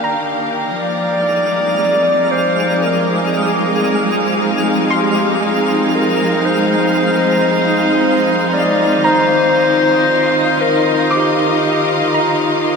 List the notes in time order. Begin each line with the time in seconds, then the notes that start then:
Already playing: D#3 A#3 D4 G4 F5 G5
0.04 A#5
0.76 F3 G#3 D5 F6
1.21 D#4
1.37 C4
2.12 F5
2.31 C5
2.82 A#4
3.11 G#3
3.35 G#4
4.90 G4 C6
5.45 G#4
5.95 A#4
6.45 C5
8.52 D5
9.04 D#3 C5 A#5
9.64 F4
9.85 D#5
10.61 A#4
11.11 G4 D6
12.14 A#5